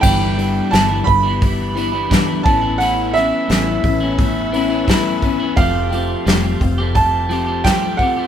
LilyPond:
<<
  \new Staff \with { instrumentName = "Grand piano" } { \time 4/4 \key a \mixolydian \tempo 4 = 87 g''4 a''8 b''2 a''8 | fis''8 e''2. r8 | f''2 a''4 g''8 fis''8 | }
  \new Staff \with { instrumentName = "Tonewheel organ" } { \time 4/4 \key a \mixolydian <d' e' g' b'>2.~ <d' e' g' b'>8 <cis' e' a' b'>8~ | <cis' e' a' b'>1 | <f c' g' a'>1 | }
  \new Staff \with { instrumentName = "Steel-string acoustic guitar" } { \time 4/4 \key a \mixolydian <g, e b d' e' b'>8 <b d' e' b'>8 <g, e b d' e' b'>8 <b d' e' b'>8 <b d' e' b'>8 <b d' e' b'>8 <g, e b d' e' b'>8 <cis' e' b'>8 | <a cis' e' b'>8 <cis' e' b'>8 <a cis' e' b'>8 <cis' e' b'>8 <a cis' e' b'>8 <cis' e' b'>8 <a cis' e' b'>8 <cis' e' b'>8 | <f a c' f' g'>8 <c' f' g'>8 <f a c' f' g'>8 <c' f' g'>8 <a c' f' g'>8 <c' f' g'>8 <f a c' f' g'>8 <c' g'>8 | }
  \new Staff \with { instrumentName = "Clean electric guitar" } { \time 4/4 \key a \mixolydian <g, d e g b e'>8 <e g b e'>8 <g, d e g b e'>16 <e g b e'>8 <e g b e'>8. <e g b e'>16 <e g b e'>16 <g, d e g b e'>16 <e g b e'>16 <a, e b cis' e'>16 <b cis' e'>16 | <a, e b cis' e'>8 <e b cis' e'>8 <a, e b cis' e'>16 <b cis' e'>8 <b cis' e'>8. <e b cis' e'>16 <b cis' e'>16 <a, e b cis' e'>16 <b cis' e'>16 <e b cis' e'>16 <b cis' e'>16 | <f a c' g'>8 <f a c' g'>8 <f a c' g'>16 <a c' g'>8 <a c' g'>8. <f a c' g'>16 <a c' g'>16 <f a c' g'>16 <a c' g'>16 <f a c' g'>16 <a c' g'>16 | }
  \new Staff \with { instrumentName = "Fingered electric bass" } { \clef bass \time 4/4 \key a \mixolydian g,,4 g,,8 g,,2 a,,8~ | a,,4 a,,8 a,,2 r8 | f,,4 f,,8 f,,2 r8 | }
  \new DrumStaff \with { instrumentName = "Drums" } \drummode { \time 4/4 <cymc hho bd>8 hho8 <hho sn>8 <hho bd>8 <hho bd>8 hho8 <hho bd sn>8 <hho bd>8 | hho8 <hho sn>8 <hho sn>8 <hho bd>8 <hho bd>8 hho8 <hho bd sn>8 <hho bd>8 | <hho bd>8 hho8 <hho sn>8 <hho bd>8 <hho bd>8 hho8 <hho bd sn>8 <hho bd>8 | }
>>